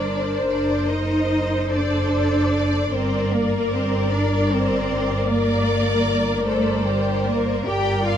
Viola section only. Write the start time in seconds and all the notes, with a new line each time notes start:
Already playing: A#4 D5
0.49 C5
1.72 A4
2.93 A#4 D5
7.66 A#4 D5